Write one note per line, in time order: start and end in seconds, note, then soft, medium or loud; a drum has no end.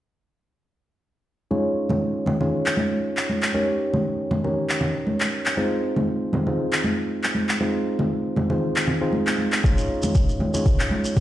1.51 2.37 C#4 medium
1.51 2.37 D#4 medium
1.51 2.37 F4 medium
1.51 2.37 G#4 medium
1.51 2.37 C#5 medium
1.51 high conga medium
1.89 high conga medium
1.89 low conga medium
2.26 high conga medium
2.26 low conga loud
2.41 3.51 C#4 medium
2.41 3.51 D#4 medium
2.41 3.51 F4 medium
2.41 3.51 G#4 medium
2.41 3.51 C#5 medium
2.41 low conga medium
2.66 clap medium
2.77 high conga medium
3.17 clap medium
3.29 high conga medium
3.42 clap medium
3.54 4.41 C#4 medium
3.54 4.41 D#4 medium
3.54 4.41 G4 medium
3.54 4.41 A#4 medium
3.54 4.41 C#5 medium
3.54 high conga medium
3.93 high conga medium
3.93 low conga medium
4.31 high conga medium
4.31 low conga medium
4.44 5.55 C#4 medium
4.44 5.55 D#4 medium
4.44 5.55 G4 medium
4.44 5.55 A#4 medium
4.44 5.55 C#5 medium
4.44 low conga medium
4.70 clap medium
4.81 low conga loud
5.07 high conga medium
5.20 clap medium
5.46 clap medium
5.57 6.44 C4 medium
5.57 6.44 D#4 medium
5.57 6.44 F4 medium
5.57 6.44 G#4 medium
5.57 6.44 C5 loud
5.57 high conga medium
5.96 high conga medium
5.96 low conga medium
6.33 high conga medium
6.33 low conga loud
6.47 7.58 C4 medium
6.47 7.58 D#4 medium
6.47 7.58 F4 medium
6.47 7.58 G#4 medium
6.47 7.58 C5 medium
6.47 low conga medium
6.73 clap medium
6.84 high conga medium
7.24 clap medium
7.35 high conga medium
7.49 clap medium
7.61 8.47 C4 medium
7.61 8.47 D#4 medium
7.61 8.47 F4 medium
7.61 8.47 G#4 medium
7.61 8.47 C5 medium
7.61 high conga medium
7.99 high conga medium
7.99 low conga medium
8.36 high conga medium
8.36 low conga medium
8.50 8.99 C4 medium
8.50 8.99 D#4 medium
8.50 8.99 F4 medium
8.50 8.99 G#4 medium
8.50 8.99 C5 medium
8.50 low conga medium
8.76 clap medium
8.88 low conga medium
9.01 9.61 C4 medium
9.01 9.61 D#4 medium
9.01 9.61 F4 medium
9.01 9.61 G#4 medium
9.01 9.61 C5 medium
9.13 high conga medium
9.27 clap medium
9.38 high conga medium
9.52 clap medium
9.64 10.51 C#4 medium
9.64 10.51 D#4 medium
9.64 10.51 F4 medium
9.64 10.51 G#4 medium
9.64 10.51 C#5 loud
9.64 kick loud
9.64 high conga medium
9.64 shekere medium
9.78 shekere soft
10.03 high conga medium
10.03 low conga medium
10.03 shekere medium
10.15 kick loud
10.15 shekere medium
10.29 shekere soft
10.40 high conga medium
10.40 low conga medium
10.54 11.20 C#4 medium
10.54 11.20 D#4 medium
10.54 11.20 F4 medium
10.54 11.20 G#4 medium
10.54 11.20 C#5 medium
10.54 low conga medium
10.54 shekere medium
10.66 kick loud
10.66 shekere medium
10.79 clap medium
10.79 shekere soft
10.91 high conga loud
11.05 shekere medium
11.17 kick loud
11.17 shekere medium